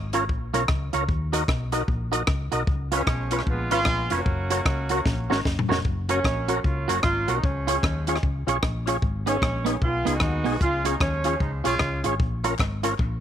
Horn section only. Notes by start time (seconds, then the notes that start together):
2.94 F3 G#3 C#4
3.49 G#3 B3 F4
3.72 G#3 B3 F4
4.12 A#3 C#4 F#4
6.10 F#3 A#3 C#4
6.63 A#3 C#4 F4
6.95 F#4
7.03 A#3 C#4 F4
7.35 D#4
7.44 F3 G#3 C#4
9.28 G#3 C#4
9.83 G#3 B3 F4
10.15 B3 D#4 F#4
10.62 G#3 C#4 F4
10.86 D#4
11.01 F3 G#3 C#4
11.41 G#3 D#4
11.65 G#3 C#4 F4